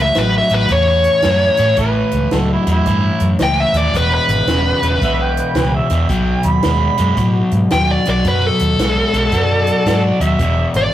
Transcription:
Already playing: A2 E3
0.02 E5
0.15 A1 A2 F#3 B4, snare, closed hi-hat
0.38 E5
0.49 A1 A2 F#3, closed hi-hat
0.54 B4
0.68 E2 A2 E3 C#5, kick, closed hi-hat
1.04 closed hi-hat
1.22 F#2 A2 E3, kick, snare, closed hi-hat
1.57 A2 E3, closed hi-hat
1.77 A1 A2 E3 B4, kick, closed hi-hat
2.11 C#2, closed hi-hat
2.31 C#2 A2 F#3 A4, snare, closed hi-hat
2.53 E4
2.67 E2 A2 F#3, closed hi-hat
2.71 E4
2.86 G2 A2 E3, kick, closed hi-hat
3.20 F#2, closed hi-hat
3.39 C#2 A2 E3, snare, closed hi-hat
3.43 G5
3.60 E5
3.73 D#2 A2 E3 D5, snare, closed hi-hat
3.94 E1 E2 B2 B4, kick, closed hi-hat
4.14 B4
4.28 G#1, closed hi-hat
4.47 E1 E2 C#3, snare, closed hi-hat
4.82 E1 E2 C#3, closed hi-hat
5.02 B1 E2 B2 E5, kick, closed hi-hat
5.22 G5
5.37 closed hi-hat
5.55 C#2 E2 B2, kick, snare, closed hi-hat
5.77 E5
5.90 E2 B2, snare, closed hi-hat
6.09 B1 B2 F#3 G5, kick, closed hi-hat
6.43 D#2 B5, closed hi-hat
6.63 D#2 B2 G#3, snare, closed hi-hat
6.98 F#2 B2 G#3, closed hi-hat
7.17 A2 B2 F#3, kick, closed hi-hat
7.51 G#2, closed hi-hat
7.70 D#2 B2 F#3 G5, snare, closed hi-hat
7.91 D5
8.05 B1 B2 F#3, snare, closed hi-hat
8.10 D5
8.24 F#2 B2 F#3 B4, kick, closed hi-hat
8.46 A4
8.59 D#2, closed hi-hat
8.78 B1 B2 G#3, snare, closed hi-hat
9.13 B1 B2 G#3, closed hi-hat
9.32 F#2 B2 F#3, kick, closed hi-hat
9.36 A4 B4 D5
9.67 closed hi-hat
9.86 G#2 B2 F#3, kick, snare, closed hi-hat
10.20 D#2 B2 F#3 E5, closed hi-hat
10.39 E1 E2 B2, kick, closed hi-hat
10.74 G#1 D5, closed hi-hat

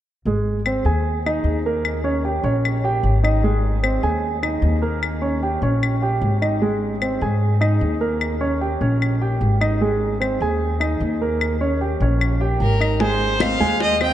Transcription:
0.25 G#1 G#3 G#4
0.66 C4 C5, claves
0.85 D#2 G#4 G#5
1.26 D#4 D#5, claves
1.44 D#2
1.66 A#3 A#4
1.85 claves
2.04 C#4 C#5
2.25 G4 G5
2.44 A#1 C#4 C#5
2.65 claves
2.84 G4 G5
3.03 G#1
3.23 D#4 D#5, claves
3.44 G#3 G#4
3.83 C4 C5, claves
4.03 D#2 G#4 G#5
4.43 D#4 D#5, claves
4.62 D#2
4.82 A#3 A#4
5.03 claves
5.22 C#4 C#5
5.43 G4 G5
5.62 A#1 C#4 C#5
5.83 claves
6.02 G4 G5
6.21 G#1
6.42 D#4 D#5, claves
6.62 G#3 G#4
7.02 C4 C5, claves
7.21 G#2 G#4 G#5
7.61 D#4 D#5, claves
7.81 D#2
8.01 A#3 A#4
8.21 claves
8.41 C#4 C#5
8.61 G4 G5
8.81 A#1 C#4 C#5
9.02 claves
9.21 G4 G5
9.41 G#1
9.61 D#4 D#5, claves
9.81 G#3 G#4
10.20 C4 C5, claves
10.41 D#2 G#4 G#5
10.80 D#4 D#5, claves
11.00 D#2
11.22 A#3 A#4
11.41 claves
11.61 C#4 C#5
11.81 G4 G5
12.00 A#1 C#4 C#5
12.21 claves
12.41 G4 G5
12.60 G#1 A#4
12.81 D#4 D#5, claves
13.00 G#3 G#4 C5 G#5, high bongo, high conga
13.21 high conga
13.40 C4 C5 D#5 F5, high bongo, high conga, claves
13.60 D#2 G#3 G#4 G#5, high bongo, high conga
13.80 D#5, high bongo, high conga
14.01 C4 C5 D#5 G5, high bongo, high conga, claves

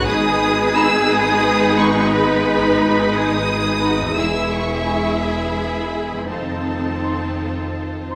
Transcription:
Already playing: G#2 D#4
0.00 G#4 B4
0.07 G#1 G#3 B3 D#4 G#4 B4 D#6
0.75 D#4 B5 E6
1.10 D#6
1.77 D#4 B5 C#6
2.11 B4 B5
2.80 D#4 B5
3.14 G#4 D#6
3.49 G#4
3.82 D#4 F#4 B5
4.00 E2
4.04 E4
4.09 G#4
4.13 G#4 B4 E5
4.17 E1 G#3 B3 E4 E6
4.53 C#6
4.86 E4 G#5
5.21 G#4 B5
5.94 E4 G#5
6.12 F2
6.16 C4
6.21 F4
6.25 D#5
6.29 F1 D#3 C4 D#4 F4 A4 C5 A5
7.02 D#4 C6
8.09 D#4 C6

